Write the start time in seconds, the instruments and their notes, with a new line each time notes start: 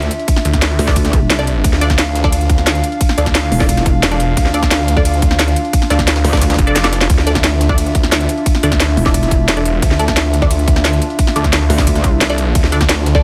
Already playing: analog synth pad D4 F4 E5
0.02 closed hi-hat
0.11 closed hi-hat, ride
0.19 closed hi-hat
0.28 kick, closed hi-hat, ride
0.36 snare
0.45 detuned saw bass D2, closed hi-hat, ride
0.53 kick, snare, closed hi-hat
0.62 snare, closed hi-hat, ride
0.70 snare
0.79 wobble bass D2, snare, closed hi-hat, open hi-hat, ride
0.88 synth stab D4 A4 D5, kick, snare, closed hi-hat
0.96 kick, closed hi-hat, ride
1.05 snare, closed hi-hat
1.13 kick, closed hi-hat, ride
1.30 detuned saw bass C2, snare, closed hi-hat, ride
1.39 synth stab D4 A4 D5, closed hi-hat
1.47 closed hi-hat, ride
1.64 detuned saw bass D2, analog synth pad F5, kick, closed hi-hat, ride
1.73 snare
1.81 synth stab D4 A4 D5, closed hi-hat, ride
1.90 kick, snare, closed hi-hat
1.98 snare, closed hi-hat, ride
2.15 snare, closed hi-hat, ride
2.24 synth stab D4 A4 D5, kick, snare
2.32 closed hi-hat, ride
2.41 closed hi-hat
2.50 detuned saw bass D2, kick, closed hi-hat, ride
2.58 snare, closed hi-hat
2.67 snare, closed hi-hat, ride
2.75 closed hi-hat
2.84 closed hi-hat, ride
2.92 closed hi-hat
3.01 kick, closed hi-hat, ride
3.09 snare
3.18 detuned saw bass D2, synth stab D4 A4 D5, closed hi-hat, ride
3.26 kick, snare, closed hi-hat
3.35 snare, closed hi-hat, ride
3.43 snare
3.52 wobble bass E1, closed hi-hat, open hi-hat, ride
3.60 synth stab D4 A4 D5, kick, snare
3.69 kick, closed hi-hat, ride
3.77 snare, closed hi-hat
3.86 kick, closed hi-hat, ride
4.03 detuned saw bass E1, snare, closed hi-hat, ride
4.11 synth stab D4 A4 D5, closed hi-hat
4.20 closed hi-hat, ride
4.37 detuned saw bass D2, kick, closed hi-hat, ride
4.46 snare
4.54 synth stab D4 A4 D5, closed hi-hat, ride
4.63 kick, snare, closed hi-hat
4.71 snare, closed hi-hat, ride
4.88 closed hi-hat, ride
4.97 synth stab D4 A4 D5, kick, snare
5.05 closed hi-hat, ride
5.14 closed hi-hat
5.22 detuned saw bass D2, kick, closed hi-hat, ride
5.31 snare, closed hi-hat
5.39 snare, closed hi-hat, ride
5.48 closed hi-hat
5.56 closed hi-hat, ride
5.65 closed hi-hat
5.73 kick, closed hi-hat, ride
5.82 snare
5.90 detuned saw bass D2, synth stab D4 A4 D5, snare, closed hi-hat, ride
5.99 kick, snare, closed hi-hat
6.07 snare, closed hi-hat, ride
6.16 snare, closed hi-hat
6.24 wobble bass D2, snare, closed hi-hat, open hi-hat, ride
6.33 synth stab D4 A4 D5, kick, snare, closed hi-hat
6.37 snare, closed hi-hat
6.41 kick, snare, closed hi-hat, ride
6.50 snare, closed hi-hat
6.54 snare, closed hi-hat
6.58 detuned saw bass F1, kick, closed hi-hat, ride
6.67 synth stab D4 A4 D5, closed hi-hat
6.76 snare, closed hi-hat, ride
6.84 synth stab D4 A4 D5, snare, closed hi-hat
6.93 snare, closed hi-hat, ride
7.01 snare
7.10 detuned saw bass D2, analog synth pad E5, kick, closed hi-hat, ride
7.18 snare
7.27 synth stab D4 A4 D5, closed hi-hat, ride
7.35 kick, snare, closed hi-hat
7.44 snare, closed hi-hat, ride
7.61 snare, closed hi-hat, ride
7.69 synth stab D4 A4 D5, kick, snare
7.78 closed hi-hat, ride
7.86 closed hi-hat
7.95 detuned saw bass D2, kick, closed hi-hat, ride
8.03 snare, closed hi-hat
8.12 snare, closed hi-hat, ride
8.21 closed hi-hat
8.29 closed hi-hat, ride
8.37 closed hi-hat
8.46 kick, closed hi-hat, ride
8.55 snare
8.63 detuned saw bass D2, synth stab D4 A4 D5, closed hi-hat, ride
8.72 kick, snare, closed hi-hat
8.80 snare, closed hi-hat, ride
8.89 snare
8.97 wobble bass E1, closed hi-hat, open hi-hat, ride
9.06 synth stab D4 A4 D5, kick, snare
9.14 kick, closed hi-hat, ride
9.23 snare, closed hi-hat
9.31 kick, closed hi-hat, ride
9.48 detuned saw bass E1, snare, closed hi-hat, ride
9.57 synth stab D4 A4 D5, closed hi-hat
9.65 closed hi-hat, ride
9.82 detuned saw bass D2, kick, closed hi-hat, ride
9.91 snare
9.99 synth stab D4 A4 D5, closed hi-hat, ride
10.08 kick, snare, closed hi-hat
10.16 snare, closed hi-hat, ride
10.34 closed hi-hat, ride
10.42 synth stab D4 A4 D5, kick, snare
10.51 closed hi-hat, ride
10.59 closed hi-hat
10.68 detuned saw bass D2, kick, closed hi-hat, ride
10.76 snare, closed hi-hat
10.85 snare, closed hi-hat, ride
10.93 closed hi-hat
11.02 closed hi-hat, ride
11.10 closed hi-hat
11.19 kick, closed hi-hat, ride
11.27 snare
11.36 detuned saw bass D2, synth stab D4 A4 D5, closed hi-hat, ride
11.44 kick, snare, closed hi-hat
11.53 snare, closed hi-hat, ride
11.61 snare
11.70 wobble bass D2, snare, closed hi-hat, open hi-hat, ride
11.78 kick, snare, closed hi-hat
11.87 kick, closed hi-hat, ride
11.95 snare, closed hi-hat
12.04 kick, closed hi-hat, ride
12.21 detuned saw bass C2, snare, closed hi-hat, ride
12.30 synth stab D4 A4 D5, closed hi-hat
12.38 closed hi-hat, ride
12.55 detuned saw bass D2, analog synth pad D5, kick, closed hi-hat, ride
12.64 snare
12.72 synth stab D4 A4 D5, closed hi-hat, ride
12.81 kick, snare, closed hi-hat
12.89 snare, closed hi-hat, ride
13.06 snare, closed hi-hat, ride
13.15 synth stab D4 A4 D5, kick, snare